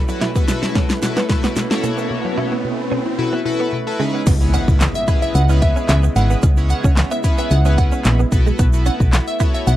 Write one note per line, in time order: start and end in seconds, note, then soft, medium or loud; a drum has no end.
0.00 3.96 B2 medium
0.00 3.96 A3 medium
0.00 3.96 C#4 medium
0.00 4.23 E4 medium
0.00 4.23 B4 medium
0.00 riser medium
0.08 0.16 F#3 medium
0.08 0.29 E4 medium
0.08 0.29 F#4 medium
0.08 0.29 A4 medium
0.08 0.29 B4 medium
0.08 muted clean electric guitar stroke soft
0.08 shaker medium
0.21 0.30 B2 medium
0.21 0.30 E4 medium
0.21 snare loud
0.21 closed hi-hat medium
0.35 0.43 A3 medium
0.35 0.43 B3 medium
0.35 0.45 E4 medium
0.35 0.45 F#4 medium
0.35 0.45 A4 medium
0.35 0.45 B4 loud
0.35 kick loud
0.35 shaker medium
0.48 0.57 B2 medium
0.48 0.90 E4 loud
0.48 0.90 F#4 medium
0.48 0.90 A4 medium
0.48 0.90 B4 loud
0.48 snare loud
0.48 closed hi-hat medium
0.48 shaker medium
0.63 snare loud
0.63 shaker medium
0.75 0.84 B2 medium
0.75 0.84 C#4 medium
0.75 kick medium
0.75 snare medium
0.75 closed hi-hat medium
0.90 0.97 E4 medium
0.90 snare loud
0.90 shaker medium
1.02 1.11 B2 medium
1.02 1.23 E4 medium
1.02 1.23 F#4 medium
1.02 1.23 A4 medium
1.02 1.23 B4 medium
1.02 snare loud
1.02 closed hi-hat medium
1.02 shaker medium
1.17 1.24 B3 medium
1.17 1.24 B4 medium
1.17 snare loud
1.17 shaker medium
1.29 1.38 B2 medium
1.29 1.60 E4 loud
1.29 1.60 F#4 medium
1.29 1.61 A4 medium
1.29 1.61 B4 loud
1.29 muted clean electric guitar stroke soft
1.29 kick medium
1.29 snare loud
1.29 closed hi-hat medium
1.44 1.51 B3 medium
1.44 1.51 F#5 medium
1.44 snare loud
1.44 shaker soft
1.56 1.65 B2 medium
1.56 muted clean electric guitar stroke soft
1.56 snare loud
1.56 closed hi-hat loud
1.56 shaker medium
1.71 2.53 E4 loud
1.71 2.53 F#4 medium
1.71 2.53 A4 medium
1.71 2.53 C#5 loud
1.71 1.78 A5 medium
1.71 snare loud
1.71 shaker soft
1.83 1.92 B2 medium
1.83 1.92 A3 medium
1.83 closed hi-hat medium
1.83 shaker medium
1.98 2.05 B3 medium
1.98 shaker medium
2.11 2.19 B2 medium
2.25 2.32 F#3 medium
2.25 muted clean electric guitar stroke soft
2.38 2.46 B2 medium
2.38 2.46 E4 medium
2.52 2.59 A3 medium
2.52 2.59 B3 medium
2.65 2.73 B2 medium
2.92 3.00 B2 medium
2.92 3.00 C#4 medium
3.06 3.14 E4 medium
3.18 3.27 B2 medium
3.18 3.39 E4 medium
3.18 3.40 F#4 medium
3.18 3.40 A4 medium
3.18 3.40 B4 medium
3.33 3.40 B3 medium
3.33 3.41 B4 medium
3.45 3.54 B2 medium
3.45 3.77 E4 loud
3.45 3.77 F#4 medium
3.45 3.77 A4 medium
3.45 3.77 B4 loud
3.45 muted clean electric guitar stroke soft
3.60 3.67 B3 medium
3.60 3.68 F#5 medium
3.73 3.81 B2 medium
3.73 muted clean electric guitar stroke soft
3.87 3.98 E4 medium
3.87 4.00 F#4 medium
3.87 4.00 A4 medium
3.87 3.99 B4 loud
3.87 3.95 A5 medium
3.99 4.26 C#3 medium
3.99 4.08 C#3 medium
3.99 4.08 G#3 medium
3.99 4.25 G#3 medium
3.99 4.21 C#4 medium
3.99 4.26 D#4 medium
3.99 4.22 E4 medium
3.99 4.22 G#4 medium
3.99 4.22 B4 loud
4.14 4.21 B3 medium
4.27 4.57 C#2 loud
4.27 8.28 C#3 medium
4.27 8.28 G#3 medium
4.27 4.35 B3 medium
4.27 9.77 B3 medium
4.27 9.77 E4 medium
4.27 8.28 D#5 medium
4.27 kick loud
4.27 closed hi-hat loud
4.27 crash loud
4.27 impact medium
4.27 shaker medium
4.41 4.92 B3 medium
4.41 4.92 C#4 medium
4.41 4.92 E4 medium
4.41 4.92 G#4 medium
4.41 4.92 B4 medium
4.41 shaker medium
4.54 4.62 C#4 medium
4.54 4.64 F#5 medium
4.54 closed hi-hat medium
4.54 shaker medium
4.68 4.88 C#2 medium
4.68 muted clean electric guitar stroke soft
4.68 kick medium
4.68 shaker medium
4.81 snare loud
4.81 clap loud
4.81 closed hi-hat medium
4.81 shaker medium
4.95 5.04 E5 medium
4.95 shaker medium
5.07 5.39 B3 medium
5.07 5.39 C#4 medium
5.07 5.39 E4 medium
5.07 5.16 E4 medium
5.07 5.39 G#4 medium
5.07 5.39 B4 loud
5.07 kick medium
5.07 closed hi-hat medium
5.07 shaker medium
5.22 5.31 E5 medium
5.22 shaker medium
5.35 5.75 C#2 loud
5.35 5.53 F#5 medium
5.35 closed hi-hat medium
5.35 shaker medium
5.49 6.00 B3 medium
5.49 6.00 C#4 medium
5.49 5.57 C#4 medium
5.49 6.00 E4 medium
5.49 6.00 G#4 medium
5.49 6.01 B4 loud
5.49 shaker medium
5.62 5.72 E5 medium
5.62 muted clean electric guitar stroke soft
5.62 kick medium
5.62 closed hi-hat medium
5.76 5.84 C#4 medium
5.76 shaker medium
5.89 6.09 C#2 loud
5.89 5.99 E5 medium
5.89 snare medium
5.89 clap loud
5.89 closed hi-hat loud
5.89 shaker medium
6.03 6.11 B3 medium
6.03 shaker medium
6.16 6.36 G#1 medium
6.16 6.47 B3 medium
6.16 6.47 C#4 medium
6.16 6.47 E4 medium
6.16 6.47 G#4 medium
6.16 6.47 B4 medium
6.16 6.26 F#5 medium
6.16 muted clean electric guitar stroke soft
6.16 closed hi-hat medium
6.16 shaker medium
6.30 6.38 B3 medium
6.30 shaker medium
6.43 6.74 C#2 loud
6.43 6.51 C#4 medium
6.43 kick loud
6.43 closed hi-hat loud
6.43 shaker medium
6.57 7.08 B3 medium
6.57 7.08 C#4 medium
6.57 7.08 E4 medium
6.57 7.08 G#4 medium
6.57 7.09 C#5 medium
6.57 shaker medium
6.70 6.80 F#5 medium
6.70 muted clean electric guitar stroke soft
6.70 closed hi-hat medium
6.70 shaker medium
6.84 7.04 C#2 medium
6.84 6.92 C#4 medium
6.84 kick loud
6.84 shaker medium
6.97 snare loud
6.97 clap loud
6.97 closed hi-hat medium
6.97 shaker medium
7.11 7.19 B3 medium
7.11 7.20 E5 medium
7.11 shaker medium
7.24 7.55 B3 medium
7.24 7.55 C#4 medium
7.24 7.55 E4 medium
7.24 7.55 G#4 medium
7.24 7.55 B4 loud
7.24 muted clean electric guitar stroke soft
7.24 kick medium
7.24 closed hi-hat medium
7.24 shaker medium
7.38 7.46 B3 medium
7.38 7.47 E5 medium
7.38 shaker medium
7.51 7.91 C#2 loud
7.51 7.70 F#5 medium
7.51 closed hi-hat medium
7.51 shaker medium
7.65 8.16 B3 medium
7.65 8.16 C#4 medium
7.65 7.73 C#4 medium
7.65 8.17 E4 medium
7.65 8.17 G#4 medium
7.65 8.17 B4 loud
7.65 shaker medium
7.78 7.88 F#5 medium
7.78 muted clean electric guitar stroke soft
7.78 kick loud
7.78 closed hi-hat medium
7.92 8.00 C#4 medium
7.92 shaker soft
8.05 8.25 A#1 loud
8.05 snare loud
8.05 clap loud
8.05 closed hi-hat loud
8.05 shaker medium
8.19 8.27 B3 medium
8.19 shaker soft
8.32 8.52 B1 medium
8.32 9.77 A3 medium
8.32 8.65 B3 medium
8.32 8.65 E4 medium
8.32 8.65 F#4 medium
8.32 8.65 A4 medium
8.32 8.65 B4 loud
8.32 muted clean electric guitar stroke soft
8.32 kick medium
8.32 closed hi-hat medium
8.32 shaker medium
8.46 8.54 G#3 medium
8.46 shaker medium
8.59 8.90 B1 loud
8.59 8.67 B3 loud
8.59 kick loud
8.59 closed hi-hat loud
8.59 shaker medium
8.73 9.25 B3 medium
8.73 9.25 E4 medium
8.73 9.25 F#4 medium
8.73 9.25 A4 medium
8.73 9.25 B4 medium
8.73 shaker medium
8.86 8.94 C#4 medium
8.86 8.96 F#5 medium
8.86 closed hi-hat medium
8.86 shaker medium
9.00 9.20 B1 medium
9.00 muted clean electric guitar stroke soft
9.00 kick medium
9.00 shaker medium
9.13 snare medium
9.13 clap loud
9.13 closed hi-hat medium
9.13 shaker medium
9.27 9.36 E5 medium
9.27 shaker medium
9.40 9.71 B3 medium
9.40 9.71 E4 medium
9.40 9.48 E4 medium
9.40 9.71 F#4 medium
9.40 9.71 A4 medium
9.40 9.71 C#5 loud
9.40 kick loud
9.40 closed hi-hat medium
9.40 shaker medium
9.54 9.63 E5 medium
9.54 shaker medium
9.67 9.77 B1 loud
9.67 9.77 F#5 medium
9.67 closed hi-hat medium
9.67 shaker medium